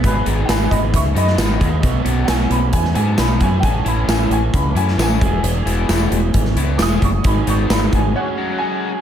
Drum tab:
HH |x-x-x-x-x-x-x-x-|x-x-x-x-x-x-x-x-|x-x-x-x-x-x-x-x-|x-x-x-x-x-x-x-x-|
TB |----x-------x---|----x-------x---|----x-------x---|----x-------x---|
SD |----o------oo---|----o----o--o---|----o------oo---|----o----o--o---|
BD |o-----o-o-----o-|o-------o-----o-|o-------o-----o-|--------o-----o-|

HH |x-x-x-x---------|
TB |----x-----------|
SD |----o-----------|
BD |o-----o---------|